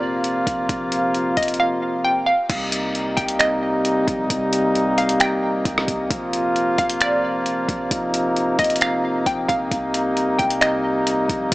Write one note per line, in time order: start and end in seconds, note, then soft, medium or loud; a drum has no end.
0.00 0.43 A#1 loud
0.00 2.33 C3 medium
0.00 2.33 F3 medium
0.00 2.33 A#3 medium
0.00 2.33 F4 medium
0.00 0.22 D5 medium
0.24 closed hi-hat medium
0.47 0.68 A#1 loud
0.47 kick medium
0.47 closed hi-hat medium
0.69 1.34 A#1 loud
0.69 kick loud
0.69 closed hi-hat medium
0.92 closed hi-hat medium
1.14 closed hi-hat medium
1.37 1.59 A#1 loud
1.37 1.58 D#5 medium
1.37 kick medium
1.37 closed hi-hat medium
1.37 open hi-hat medium
1.43 closed hi-hat medium
1.48 closed hi-hat medium
1.54 closed hi-hat medium
1.60 2.02 F5 medium
2.04 2.26 G5 loud
2.26 2.48 F5 medium
2.50 3.15 C2 loud
2.50 6.07 C3 medium
2.50 6.07 G3 medium
2.50 11.54 A#3 medium
2.50 6.07 D#4 medium
2.50 kick loud
2.50 closed hi-hat medium
2.50 crash loud
2.72 closed hi-hat medium
2.95 closed hi-hat medium
3.17 4.04 C2 loud
3.17 3.38 G5 medium
3.17 kick medium
3.17 closed hi-hat medium
3.28 closed hi-hat medium
3.39 3.82 D#5 medium
3.39 finger snap loud
3.39 closed hi-hat medium
3.85 closed hi-hat medium
4.08 4.29 A#1 loud
4.08 kick medium
4.08 closed hi-hat medium
4.30 5.61 C2 loud
4.30 kick loud
4.30 closed hi-hat medium
4.53 closed hi-hat medium
4.75 closed hi-hat medium
4.98 5.19 F5 medium
4.98 closed hi-hat medium
5.09 closed hi-hat medium
5.20 5.63 G5 medium
5.20 finger snap loud
5.20 closed hi-hat medium
5.65 5.87 C2 loud
5.65 kick loud
5.65 closed hi-hat medium
5.78 cross-stick loud
5.88 6.10 C2 loud
5.88 kick medium
5.88 closed hi-hat medium
6.11 6.75 A#1 loud
6.11 11.54 C3 medium
6.11 9.68 F3 medium
6.11 7.89 F4 medium
6.11 kick loud
6.11 closed hi-hat medium
6.33 closed hi-hat medium
6.56 closed hi-hat medium
6.78 7.65 A#1 loud
6.78 7.00 F5 medium
6.78 kick medium
6.78 closed hi-hat medium
6.90 closed hi-hat medium
7.01 7.44 D5 loud
7.01 finger snap loud
7.01 closed hi-hat medium
7.46 closed hi-hat medium
7.69 7.90 A#1 loud
7.69 kick medium
7.69 closed hi-hat medium
7.91 8.56 A#1 loud
7.91 11.54 D#4 medium
7.91 kick loud
7.91 closed hi-hat medium
8.14 closed hi-hat medium
8.36 closed hi-hat medium
8.59 9.02 A#1 loud
8.59 8.80 D#5 medium
8.59 kick medium
8.59 closed hi-hat medium
8.59 open hi-hat medium
8.64 closed hi-hat medium
8.70 closed hi-hat medium
8.76 closed hi-hat medium
8.81 9.24 F5 medium
8.81 finger snap loud
8.81 closed hi-hat medium
9.26 9.48 A#1 loud
9.26 9.48 G5 medium
9.26 kick loud
9.26 closed hi-hat medium
9.48 9.71 A#1 loud
9.48 9.70 F5 medium
9.48 kick medium
9.48 closed hi-hat medium
9.71 10.36 C2 loud
9.71 11.54 G3 medium
9.71 kick loud
9.71 closed hi-hat medium
9.94 closed hi-hat medium
10.17 closed hi-hat medium
10.39 11.26 C2 loud
10.39 10.60 G5 medium
10.39 kick medium
10.39 closed hi-hat medium
10.50 closed hi-hat medium
10.61 11.04 D#5 medium
10.61 finger snap loud
10.61 closed hi-hat medium
11.07 closed hi-hat medium
11.29 11.51 A#1 loud
11.29 kick medium
11.29 closed hi-hat medium